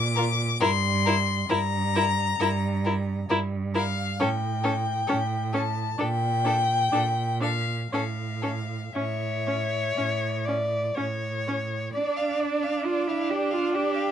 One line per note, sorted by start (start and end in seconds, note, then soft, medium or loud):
0.00 0.49 A#2 medium
0.00 0.62 D6 loud
0.16 0.25 F4 medium
0.16 0.24 A#4 medium
0.60 1.38 G2 loud
0.60 0.69 E4 medium
0.60 0.68 A#4 medium
0.60 1.51 C6 loud
1.06 1.15 E4 medium
1.06 1.14 A#4 medium
1.48 2.28 G2 medium
1.48 1.58 E4 medium
1.48 1.57 A#4 medium
1.48 3.30 A#5 loud
1.95 2.04 E4 medium
1.95 2.03 A#4 medium
2.39 3.19 G2 loud
2.39 2.49 E4 medium
2.39 2.48 A#4 medium
2.85 2.94 E4 medium
2.85 2.93 A#4 medium
3.29 4.09 G2 medium
3.29 3.38 E4 medium
3.29 3.37 A#4 medium
3.74 3.83 E4 medium
3.74 3.82 A#4 medium
3.74 4.22 F5 loud
4.20 5.00 A2 medium
4.20 4.28 C#4 medium
4.20 4.28 A4 medium
4.20 5.57 G5 loud
4.64 4.72 C#4 medium
4.64 4.72 A4 medium
5.07 5.89 A2 medium
5.07 5.17 C#4 medium
5.07 5.15 A4 medium
5.53 5.62 C#4 medium
5.53 5.61 A4 medium
5.53 6.00 A5 medium
5.98 6.82 A#2 medium
5.98 6.06 D4 medium
5.98 6.08 A4 medium
5.98 7.41 G5 loud
6.45 6.53 D4 medium
6.45 6.54 A4 medium
6.92 7.80 A#2 medium
6.92 7.00 D4 medium
6.92 7.02 A4 medium
7.41 7.49 D4 medium
7.41 7.50 A4 medium
7.41 7.91 F5 loud
7.92 8.82 A2 medium
7.92 8.01 C#4 medium
7.92 8.02 A4 medium
7.92 8.94 F5 medium
8.42 8.51 C#4 medium
8.42 8.50 A4 medium
8.93 9.84 A2 medium
8.93 9.03 C#4 medium
8.93 10.47 C#5 medium
8.93 10.96 E5 medium
9.47 9.55 C#4 medium
9.96 10.84 A2 medium
9.96 10.05 C#4 medium
10.45 10.56 C#4 soft
10.45 10.97 D5 medium
10.95 11.84 A2 medium
10.95 11.05 C#4 medium
10.95 11.93 C#5 medium
11.48 11.56 C#4 medium
11.93 12.86 D4 medium
11.93 14.12 D4 medium
11.93 12.18 D5 medium
11.93 12.87 D5 medium
12.16 12.42 F5 soft
12.40 12.64 D5 medium
12.63 12.86 F5 soft
12.85 13.09 F4 medium
12.85 13.10 D5 medium
12.85 13.09 F5 medium
13.07 13.32 E4 medium
13.07 13.31 E5 medium
13.07 13.31 F5 soft
13.29 13.55 G4 medium
13.29 13.53 D5 soft
13.29 13.52 G5 medium
13.50 13.76 F4 medium
13.50 13.73 F5 medium
13.50 13.72 F5 soft
13.71 14.12 G4 medium
13.71 13.96 D5 medium
13.71 14.12 G5 medium
13.95 14.12 F5 soft